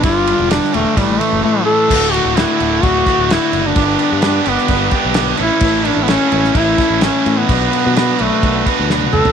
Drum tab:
CC |----------------|x-x-x-x-x-x-x-x-|x-x-x-x-x-x-x-x-|x-x-x-x-x-x-x-x-|
RD |x-x-x-x-x-x-----|----------------|----------------|----------------|
SD |----oo----------|----o-----o-o---|----o--o----o---|----o--o--o-o---|
T1 |----------------|----------------|----------------|----------------|
T2 |----------------|----------------|----------------|----------------|
FT |----------------|----------------|----------------|----------------|
BD |o-------o-------|o-------o-o-----|o-------o-o-----|o-------o-o-----|

CC |x-x-x-x-x-x-----|
RD |----------------|
SD |----o-------o---|
T1 |-------------o--|
T2 |--------------o-|
FT |---------------o|
BD |o-------o-o-----|